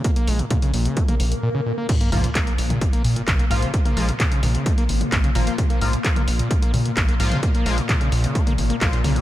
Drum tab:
CC |----------------|x---------------|----------------|----------------|
HH |xxoxxxoxxxox----|xxoxxxoxxxoxxxox|xxoxxxoxxxoxxxox|xxoxxxoxxxoxxxox|
CP |----------------|----x-------x---|----x-------x---|----x-------x---|
T2 |----o----o------|--o----o----o---|-o----o----o----|o----o----o----o|
BD |o---o---o-------|o---o---o---o---|o---o---o---o---|o---o---o---o---|

CC |----------------|
HH |xxoxxxoxxxoxxxox|
CP |----x-------x---|
T2 |----o----o----o-|
BD |o---o---o---o---|